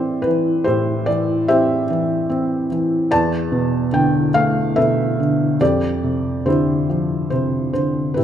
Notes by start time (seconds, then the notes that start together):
Already playing: A2 E3 C4 E4 G4 A4 B4 C5 D5
0.22 B4
0.27 E3
0.64 A2 E4 G4 C5
1.06 E3 D5
1.48 C4 G4 C5 E5
1.90 E3
2.30 C4
2.71 E3
3.11 E2 D5 A5
3.52 B2
3.92 D3 G5
4.34 A3 F5
4.76 B2 A4 B4 E5
5.20 D3
5.61 F2 G4 A4 D5
6.03 C3
6.46 D3 E4 G4 C5
6.90 F3
7.30 C3 C5
7.73 D3 C5
8.14 E4 G4 B4
8.18 A2